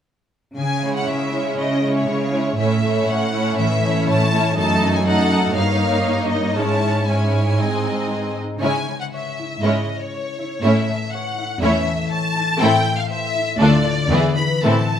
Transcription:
0.57 C#3 G#5
0.82 G#3 C#4 E4 C#5
0.96 F#5
1.07 C#3 C#5 E5
1.32 G#3 C#4 E4 C#5
1.58 C#3 C#4 D#5
1.81 G#3 C#4 E4 C#5
1.96 C#5
2.08 C#3 C#5
2.32 G#3 C#4 E4 C#5
2.57 A2 A3 C#4 E4 C#5 E5
2.83 A3 C#4 E4 C#5
3.07 A2 C#5 F#5
3.33 A3 C#4 E4 C#5
3.57 A2 E3 E5
3.83 A3 C#4 E4 C#5
4.08 A2 C#5 A5
4.32 A3 C#4 E4 C#5
4.56 F#2 A3 D#4 A4 A5
4.82 A3
4.94 G#5
5.05 A3 D#4 A4 D#5 F#5
5.31 D#4
5.54 G2 A#3 D#4 C#5 F5
5.81 A#3
6.06 C#5
6.30 D#4 D#5
6.56 G#2 G#3 C#4 E4 C#5 A5
6.83 G#3
7.06 G#3 C#4 E4 C#5 G#5
7.34 E4
7.59 G#2 G#3 C4 D#4 D#5
7.85 G#3
8.11 C5
8.37 D#4
8.61 C#3 G#3 C#4 E4 C#5 G#5
8.88 G#3
9.00 F#5
9.13 C#5 E5
9.39 E4
9.62 G#2 G#3 C#4 E4 C#5 D#5
9.89 G#3
10.01 C#5
10.14 C#5
10.39 E4
10.63 A2 A3 C#4 E4 C#5 E5
10.89 A3
11.12 C#5 F#5
11.38 E4
11.61 E2 E3 A3 C#4 E4 C#5 E5
11.87 A3
12.11 C#5 A5
12.36 E4
12.59 A2 A3 C4 E4 A4 G5
12.85 A3
12.98 F5
13.10 C5 E5
13.35 E4
13.59 D2 D3 A3 D4 F4 A4 D5
13.86 F4 D5
14.09 E2 E3 B3 E4 G#4
14.36 E4 B4 B5
14.63 A2 E3 C4 E4 A4 A5
14.90 A3

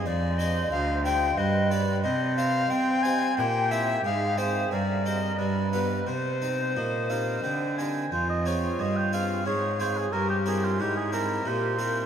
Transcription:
0.06 F2 C5 D5
0.38 D4 G#4 C5 D#5
0.71 D2 F5
1.04 D4 G#4 C5 G5
1.38 G2 B4 D#5
1.71 D4 G4 B4 D5
2.03 C3 C5 D#5
2.37 C4 G4 C5 F5
2.70 C4 G5
3.03 C4 G4 C5 G#5
3.37 A#2 G4 G5
3.71 C4 E4 C5 E5
4.04 G#2 G#4 F5
4.37 C4 F4 C5
4.71 G2 A#4 D5
5.06 C4 G4 C5 D#5
5.38 G2 B4 D5
5.73 B3 F4 G4 B4
6.07 C3 C5
6.42 C4 D#4 G4
6.76 A#2 D#5
7.10 C4 D#4 G4 F5
7.43 D3 G5
7.78 C4 D#4 G4 G#5
8.12 F2 F4 C5
8.30 D#5
8.46 C4 F4 G#4 C#5
8.79 G2 D#5
8.96 G5
9.13 C4 F4 G#4 F5
9.46 G#2 G#4 C#5
9.80 C4 F4 G#4 C5
9.97 G#4
10.12 G2 G4 A#4
10.30 G4
10.46 C4 E4 G#4 A#4
10.64 F4
10.79 G#2 E4 G4
10.97 G#4
11.12 C4 E4 A#4
11.46 A#2 G4 C5
11.78 C4 E4 A#4

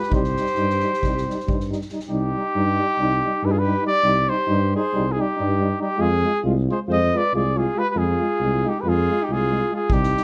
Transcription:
Already playing: G4 B4
0.02 snare
0.09 C2 G3 D#4, kick
0.14 G4 C5
0.24 snare
0.36 G3 D#4, snare
0.46 snare
0.55 G2 G3 D#4, snare
0.69 snare
0.80 G3 D#4, snare
0.93 snare
1.02 C2 G3 D#4, kick, snare
1.17 snare
1.28 G3 D#4, snare
1.40 snare
1.47 G2 G3 D#4, kick
1.60 snare
1.70 G3 D#4, snare
1.81 snare
1.89 G3 D#4, snare
1.99 snare
2.09 C2 G3 D#4 G4
2.35 G3 D#4
2.55 G2 G3 D#4
2.78 G3 D#4
2.98 C2 G3 D#4
3.24 G3 D#4
3.43 G2 G3 D#4 B4
3.47 G4 G#4
3.52 F4
3.58 G4 B4
3.66 G3 D#4
3.82 G3 D#4
3.87 G4 D5
4.04 C2 G3 D#4
4.28 G3 D#4 G4 C5
4.47 G2 G3 D#4
4.72 G3 D#4 G#4
4.77 C5
4.94 C2 G3 D#4
5.10 F4 G#4
5.17 G3 D#4 G4
5.37 G2 G3 D#4
5.60 G3 D#4
5.80 G3 D#4 G4
5.98 F2 G#3 F4 G#4
6.24 G#3 F4
6.44 C2 G#3 F4
6.68 G#3 F4 G#4 C5
6.88 F2 G#3 F4 C5 D#5
7.14 G#3 F4 B4 D5
7.33 C2 G#3 F4 G#4 D5
7.56 G#3 F4 G#4
7.75 G#3 F4 G4 B4
7.88 G4 B4
7.94 F2 G#3 F4 G#4
8.19 G#3 F4
8.38 C2 G#3 F4
8.63 G#3 D#4 F4
8.69 G4
8.79 G4 B4
8.83 F2 G#3 F4
8.89 G#4
9.09 G#3 F4
9.23 D#4 G4
9.28 C2 G#3 F4
9.32 F4 G#4
9.52 G#3 F4
9.70 G#3 F4
9.76 G#4
9.90 C2 G3 D#4 G4, kick
10.03 snare
10.15 G3 D#4, snare

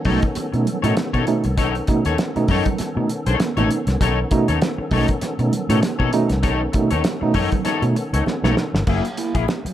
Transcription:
Already playing: D#3 B3 C#4 A4
0.05 B1 B2 A3 C#4 D#4 A4 C#5, kick, open hi-hat, low conga
0.22 muted clean electric guitar stroke, kick, closed hi-hat
0.35 muted clean electric guitar stroke, muted fingered electric bass stroke, closed hi-hat, muted conga
0.53 B2 A3 C#4 D#4, muted clean electric guitar stroke, closed hi-hat
0.65 closed hi-hat, low conga
0.82 A2 B2 A3 C#4 D#4 A4 C#5, closed hi-hat
0.96 muted clean electric guitar stroke, snare, closed hi-hat, high conga
1.13 B2 D#4 A4 C#5, kick, closed hi-hat, high conga
1.27 B2 A3 C#4 D#4, muted clean electric guitar stroke, closed hi-hat
1.44 C2, muted clean electric guitar stroke, closed hi-hat
1.57 B1 D#4 A4 C#5, kick, closed hi-hat, muted conga
1.75 C#4 D#4, closed hi-hat
1.87 B2 A3 C#4 D#4, muted clean electric guitar stroke, kick, closed hi-hat, muted conga
2.05 D#2 D#4 A4 C#5, closed hi-hat
2.18 snare, closed hi-hat, high conga
2.36 B2 A3 C#4 D#4, muted fingered electric bass stroke, muted clean electric guitar stroke, closed hi-hat
2.48 F#2 D#4 A4 C#5, kick, open hi-hat, low conga
2.65 muted clean electric guitar stroke, kick, closed hi-hat, low conga
2.78 muted fingered electric bass stroke, muted clean electric guitar stroke, snare, closed hi-hat, muted conga
2.96 B2 A3 C#4 D#4, muted clean electric guitar stroke
3.09 closed hi-hat
3.26 B1 D#4 A4 C#5, closed hi-hat
3.40 muted clean electric guitar stroke, snare, closed hi-hat, high conga
3.57 A1 B2 A3 C#4 D#4 A4 C#5, closed hi-hat, high conga
3.70 C#4 D#4, muted clean electric guitar stroke, closed hi-hat
3.87 C2, muted clean electric guitar stroke, snare, closed hi-hat
4.01 B1 D#4 A4 C#5, kick, closed hi-hat, muted conga
4.31 B2 A3 C#4 D#4, muted clean electric guitar stroke, kick, closed hi-hat, muted conga
4.48 D#2 D#4 A4 C#5, closed hi-hat
4.62 C#4 D#4, snare, closed hi-hat, high conga
4.78 muted fingered electric bass stroke, muted clean electric guitar stroke
4.91 B1 B2 A3 C#4 D#4 A4 C#5, kick, open hi-hat, low conga
5.08 muted clean electric guitar stroke, kick, closed hi-hat
5.21 muted fingered electric bass stroke, muted clean electric guitar stroke, snare, closed hi-hat, muted conga
5.39 B2 A3 C#4 D#4, muted clean electric guitar stroke, closed hi-hat
5.52 closed hi-hat, low conga
5.69 A2 B2 A3 C#4 D#4 A4 C#5, closed hi-hat
5.83 snare, closed hi-hat, high conga
5.99 B2 D#4 A4 C#5, kick, high conga
6.13 B2 A3 C#4 D#4, muted clean electric guitar stroke, closed hi-hat
6.29 C2, muted clean electric guitar stroke, snare, closed hi-hat
6.43 B1 D#4 A4 C#5, kick, closed hi-hat, muted conga
6.62 C#4 D#4
6.73 B2 A3 C#4 D#4, muted clean electric guitar stroke, kick, closed hi-hat, muted conga
6.91 D#2 D#4 A4 C#5, closed hi-hat
7.04 snare, closed hi-hat, high conga
7.21 B2 A3 C#4 D#4, muted clean electric guitar stroke, muted fingered electric bass stroke
7.34 F#2 C#4 D#4 A4 C#5, kick, open hi-hat, low conga
7.52 muted clean electric guitar stroke, kick, closed hi-hat, low conga
7.65 D#4 A4 C#5, muted fingered electric bass stroke, snare, closed hi-hat, muted conga
7.82 B2 A3 C#4 D#4, closed hi-hat
7.96 muted clean electric guitar stroke, closed hi-hat
8.13 C#2 D#4 A4 C#5, closed hi-hat
8.26 muted clean electric guitar stroke, snare, high conga
8.44 B1 B2 A3 C#4 D#4 A4 C#5, snare, high conga
8.57 C#4 D#4, muted clean electric guitar stroke, snare
8.74 G1, muted clean electric guitar stroke, snare
8.87 F#1 F#3 A#3 E4 G#4, kick, crash, muted conga
9.05 muted clean electric guitar stroke, closed hi-hat
9.17 A#3 E4, muted clean electric guitar stroke, closed hi-hat, muted conga
9.35 A#1 A#3 E4 G#4, kick, closed hi-hat
9.48 A#3 E4, muted clean electric guitar stroke, snare, high conga
9.65 F#3, muted fingered electric bass stroke, muted clean electric guitar stroke, closed hi-hat

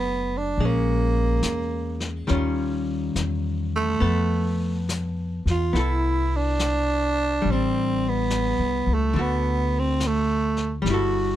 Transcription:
Already playing: F#1 F#3 A3 B3 D4
0.37 D4
0.57 A#1 G#3, brush sweep
0.65 A#3 C#4
1.42 E2, snare, hi-hat pedal
2.00 snare
2.27 D#2 D#3 G3 C#4 F4, brush sweep, snare
3.15 E2, snare, hi-hat pedal
3.76 A3
4.00 F2 B3 A4, brush sweep
4.89 snare, hi-hat pedal
5.46 E2, snare
5.50 F4
5.73 C2 B3 E4 A4, brush sweep, snare
5.80 E4
6.36 D4
6.59 snare, hi-hat pedal
7.42 A1 G3, brush sweep
7.51 C4 D4
8.09 B3
8.30 snare, hi-hat pedal
8.59 C2
8.87 C#2
8.94 A3
9.14 D2 D3 A3, brush sweep
9.19 B3 F#4
9.79 C4
10.00 snare, hi-hat pedal
10.07 A3
10.56 snare
10.82 G1 G3, brush sweep, snare
10.90 E4 F#4 A4

